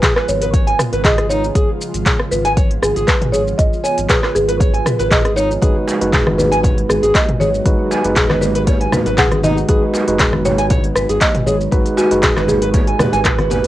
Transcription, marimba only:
0.00 0.29 B4 loud
0.29 1.07 C#5 loud
1.04 1.28 D#5 medium
1.29 2.34 C#5 loud
2.31 2.84 B4 loud
2.82 3.06 G#4 medium
3.07 3.34 B4 loud
3.32 3.44 C#5 loud
3.58 3.84 D#5 loud
3.84 4.10 C#5 medium
4.09 4.33 B4 loud
4.35 4.87 G#4 loud
4.86 4.97 B4 loud
5.11 5.35 D#5 loud
5.36 6.41 C#5 loud
6.38 6.86 B4 loud
6.89 7.15 G#4 medium
7.15 7.26 D#5 loud
7.40 8.45 C#5 loud
8.42 8.92 B4 loud
8.93 9.16 B4 loud
9.18 9.30 F#5 loud
9.44 10.48 D#5 loud
10.45 10.98 C#5 loud
10.96 11.22 B4 loud
11.21 11.47 D#5 loud
11.46 11.73 C#5 loud
11.71 11.98 B4 loud
11.98 12.50 F#4 loud
12.48 13.46 G#4 medium

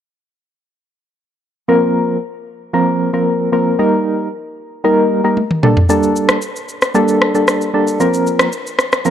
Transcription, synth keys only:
1.68 2.17 F3 medium
1.68 2.17 A#3 medium
1.68 2.17 C4 medium
1.68 2.17 A#4 loud
2.73 3.10 F3 medium
2.73 3.10 A#3 medium
2.73 3.11 C4 medium
2.73 3.11 A#4 medium
3.13 3.50 F3 medium
3.13 3.50 A#3 medium
3.13 3.50 C4 medium
3.13 3.50 A#4 medium
3.52 3.77 F3 medium
3.52 3.77 A#3 medium
3.52 3.77 C4 medium
3.52 3.77 A#4 medium
3.79 4.28 G3 medium
3.79 4.28 A#3 medium
3.79 4.28 D#4 medium
3.79 4.28 A#4 loud
4.84 5.21 G3 medium
4.84 5.21 A#3 medium
4.84 5.21 D#4 medium
4.84 5.21 A#4 loud
5.24 5.38 G3 medium
5.24 5.38 A#3 medium
5.24 5.39 D#4 medium
5.24 5.39 A#4 medium
5.63 5.78 G3 medium
5.63 5.78 A#3 medium
5.63 5.78 D4 medium
5.63 5.78 A4 medium
5.89 6.38 G3 medium
5.89 6.38 A#3 medium
5.89 6.38 D4 medium
5.89 6.38 A4 loud
6.94 7.31 G3 medium
6.94 7.31 A#3 medium
6.94 7.32 D4 medium
6.94 7.32 A4 loud
7.34 7.71 G3 medium
7.34 7.71 A#3 medium
7.34 7.71 D4 medium
7.34 7.71 A4 medium
7.74 7.98 G3 medium
7.74 7.98 A#3 medium
7.74 7.98 D4 medium
7.74 7.98 A4 medium
8.00 8.49 F3 medium
8.00 8.49 A#3 medium
8.00 8.49 C4 medium
8.00 8.49 A#4 loud
9.05 9.10 F3 medium
9.05 9.10 A#3 medium
9.05 9.10 C4 medium
9.05 9.10 A#4 loud

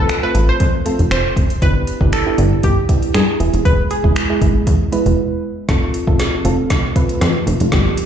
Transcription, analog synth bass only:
0.35 0.51 A1 medium
0.60 0.76 F2 loud
0.99 1.07 F1 medium
1.11 1.27 F1 loud
1.37 1.52 F1 medium
1.62 1.78 G1 loud
2.01 2.17 G1 loud
2.38 2.54 G1 medium
2.64 2.80 G1 loud
3.14 3.23 G2 loud
3.40 3.48 E1 loud
3.54 3.61 F1 loud
3.65 3.81 E1 loud
4.04 4.12 E1 loud
4.41 4.57 G#1 medium
4.67 4.83 E2 loud
5.06 5.13 E1 medium
5.69 5.85 F1 loud
6.07 6.23 F1 loud
6.45 6.61 F1 medium
6.70 6.86 F1 loud
7.21 7.30 F2 loud
7.47 7.55 F1 loud
7.60 7.68 F1 medium
7.72 7.88 G1 loud

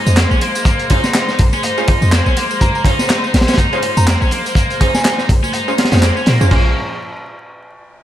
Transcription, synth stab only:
0.00 0.88 C#4 loud
0.00 0.88 F4 medium
0.00 0.88 G#4 medium
0.00 0.88 C5 loud
0.90 1.06 C#4 medium
0.90 1.06 F4 medium
0.90 1.06 G#4 medium
0.90 1.06 C5 medium
1.77 2.83 C#4 loud
1.77 2.83 F4 medium
1.77 2.83 G#4 medium
1.77 2.83 C5 loud
2.85 3.01 C#4 medium
2.85 3.01 F4 medium
2.85 3.01 G#4 medium
2.85 3.01 C5 medium
3.73 4.78 C#4 loud
3.73 4.78 F4 medium
3.73 4.78 G#4 medium
3.73 4.78 C5 loud
4.81 4.96 C#4 medium
4.81 4.96 F4 medium
4.81 4.96 G#4 medium
4.81 4.96 C5 loud
5.68 5.76 C#4 medium
5.68 5.76 F4 medium
5.68 5.76 G#4 medium
5.68 5.76 C5 loud
5.78 5.90 C#4 medium
5.78 5.90 F4 medium
5.78 5.90 G#4 medium
5.78 5.90 C5 medium
5.92 6.05 C#4 medium
5.92 6.05 F4 medium
5.92 6.05 G#4 medium
5.92 6.05 C5 medium
6.41 6.50 C#4 medium
6.41 6.50 F4 medium
6.41 6.50 G#4 medium
6.41 6.50 C5 loud
6.51 6.70 C#4 medium
6.51 6.70 F4 medium
6.51 6.70 G#4 medium
6.51 6.70 C5 loud

